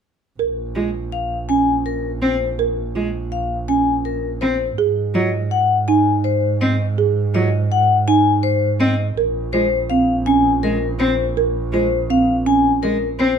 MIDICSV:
0, 0, Header, 1, 5, 480
1, 0, Start_track
1, 0, Key_signature, -5, "minor"
1, 0, Tempo, 365854
1, 514, Time_signature, 6, 2, 24, 8
1, 17565, End_track
2, 0, Start_track
2, 0, Title_t, "Vibraphone"
2, 0, Program_c, 0, 11
2, 1475, Note_on_c, 0, 77, 56
2, 1786, Note_off_c, 0, 77, 0
2, 1951, Note_on_c, 0, 80, 64
2, 2265, Note_off_c, 0, 80, 0
2, 2437, Note_on_c, 0, 70, 56
2, 2747, Note_off_c, 0, 70, 0
2, 2919, Note_on_c, 0, 72, 55
2, 3228, Note_off_c, 0, 72, 0
2, 4354, Note_on_c, 0, 77, 56
2, 4666, Note_off_c, 0, 77, 0
2, 4832, Note_on_c, 0, 80, 65
2, 5145, Note_off_c, 0, 80, 0
2, 5315, Note_on_c, 0, 70, 56
2, 5626, Note_off_c, 0, 70, 0
2, 5787, Note_on_c, 0, 72, 57
2, 6104, Note_off_c, 0, 72, 0
2, 6757, Note_on_c, 0, 75, 58
2, 7067, Note_off_c, 0, 75, 0
2, 7231, Note_on_c, 0, 78, 59
2, 7545, Note_off_c, 0, 78, 0
2, 7711, Note_on_c, 0, 80, 65
2, 8025, Note_off_c, 0, 80, 0
2, 8190, Note_on_c, 0, 72, 62
2, 8505, Note_off_c, 0, 72, 0
2, 8677, Note_on_c, 0, 75, 58
2, 8987, Note_off_c, 0, 75, 0
2, 9638, Note_on_c, 0, 75, 63
2, 9947, Note_off_c, 0, 75, 0
2, 10123, Note_on_c, 0, 78, 64
2, 10429, Note_off_c, 0, 78, 0
2, 10596, Note_on_c, 0, 80, 71
2, 10907, Note_off_c, 0, 80, 0
2, 11062, Note_on_c, 0, 72, 64
2, 11382, Note_off_c, 0, 72, 0
2, 11551, Note_on_c, 0, 75, 67
2, 11865, Note_off_c, 0, 75, 0
2, 12502, Note_on_c, 0, 72, 63
2, 12822, Note_off_c, 0, 72, 0
2, 12983, Note_on_c, 0, 77, 67
2, 13302, Note_off_c, 0, 77, 0
2, 13463, Note_on_c, 0, 80, 70
2, 13782, Note_off_c, 0, 80, 0
2, 13949, Note_on_c, 0, 70, 63
2, 14264, Note_off_c, 0, 70, 0
2, 14429, Note_on_c, 0, 72, 59
2, 14744, Note_off_c, 0, 72, 0
2, 15399, Note_on_c, 0, 72, 61
2, 15708, Note_off_c, 0, 72, 0
2, 15880, Note_on_c, 0, 77, 64
2, 16188, Note_off_c, 0, 77, 0
2, 16354, Note_on_c, 0, 80, 69
2, 16666, Note_off_c, 0, 80, 0
2, 16830, Note_on_c, 0, 70, 68
2, 17145, Note_off_c, 0, 70, 0
2, 17313, Note_on_c, 0, 72, 60
2, 17565, Note_off_c, 0, 72, 0
2, 17565, End_track
3, 0, Start_track
3, 0, Title_t, "Marimba"
3, 0, Program_c, 1, 12
3, 515, Note_on_c, 1, 70, 73
3, 826, Note_off_c, 1, 70, 0
3, 1001, Note_on_c, 1, 65, 50
3, 1308, Note_off_c, 1, 65, 0
3, 1962, Note_on_c, 1, 61, 65
3, 2269, Note_off_c, 1, 61, 0
3, 3399, Note_on_c, 1, 70, 73
3, 3708, Note_off_c, 1, 70, 0
3, 3874, Note_on_c, 1, 65, 53
3, 4186, Note_off_c, 1, 65, 0
3, 4839, Note_on_c, 1, 61, 65
3, 5147, Note_off_c, 1, 61, 0
3, 6275, Note_on_c, 1, 68, 74
3, 6586, Note_off_c, 1, 68, 0
3, 6758, Note_on_c, 1, 65, 54
3, 7067, Note_off_c, 1, 65, 0
3, 7718, Note_on_c, 1, 63, 77
3, 8027, Note_off_c, 1, 63, 0
3, 9160, Note_on_c, 1, 68, 77
3, 9468, Note_off_c, 1, 68, 0
3, 9642, Note_on_c, 1, 65, 57
3, 9949, Note_off_c, 1, 65, 0
3, 10599, Note_on_c, 1, 63, 78
3, 10908, Note_off_c, 1, 63, 0
3, 12038, Note_on_c, 1, 70, 82
3, 12347, Note_off_c, 1, 70, 0
3, 12516, Note_on_c, 1, 65, 60
3, 12827, Note_off_c, 1, 65, 0
3, 12998, Note_on_c, 1, 60, 62
3, 13307, Note_off_c, 1, 60, 0
3, 13479, Note_on_c, 1, 61, 78
3, 13788, Note_off_c, 1, 61, 0
3, 14920, Note_on_c, 1, 70, 86
3, 15228, Note_off_c, 1, 70, 0
3, 15396, Note_on_c, 1, 65, 57
3, 15706, Note_off_c, 1, 65, 0
3, 15874, Note_on_c, 1, 60, 62
3, 16186, Note_off_c, 1, 60, 0
3, 16352, Note_on_c, 1, 61, 77
3, 16665, Note_off_c, 1, 61, 0
3, 17565, End_track
4, 0, Start_track
4, 0, Title_t, "Cello"
4, 0, Program_c, 2, 42
4, 990, Note_on_c, 2, 56, 55
4, 1171, Note_off_c, 2, 56, 0
4, 2913, Note_on_c, 2, 60, 58
4, 3093, Note_off_c, 2, 60, 0
4, 3881, Note_on_c, 2, 56, 54
4, 4058, Note_off_c, 2, 56, 0
4, 5794, Note_on_c, 2, 60, 59
4, 5974, Note_off_c, 2, 60, 0
4, 6749, Note_on_c, 2, 54, 62
4, 6931, Note_off_c, 2, 54, 0
4, 8675, Note_on_c, 2, 60, 63
4, 8855, Note_off_c, 2, 60, 0
4, 9635, Note_on_c, 2, 54, 62
4, 9815, Note_off_c, 2, 54, 0
4, 11546, Note_on_c, 2, 60, 69
4, 11729, Note_off_c, 2, 60, 0
4, 12503, Note_on_c, 2, 56, 62
4, 12687, Note_off_c, 2, 56, 0
4, 13953, Note_on_c, 2, 56, 62
4, 14133, Note_off_c, 2, 56, 0
4, 14421, Note_on_c, 2, 60, 63
4, 14606, Note_off_c, 2, 60, 0
4, 15381, Note_on_c, 2, 56, 58
4, 15566, Note_off_c, 2, 56, 0
4, 16828, Note_on_c, 2, 56, 61
4, 17010, Note_off_c, 2, 56, 0
4, 17308, Note_on_c, 2, 60, 66
4, 17490, Note_off_c, 2, 60, 0
4, 17565, End_track
5, 0, Start_track
5, 0, Title_t, "Double bass"
5, 0, Program_c, 3, 43
5, 517, Note_on_c, 3, 34, 58
5, 6127, Note_off_c, 3, 34, 0
5, 6276, Note_on_c, 3, 44, 67
5, 11886, Note_off_c, 3, 44, 0
5, 12034, Note_on_c, 3, 34, 69
5, 17565, Note_off_c, 3, 34, 0
5, 17565, End_track
0, 0, End_of_file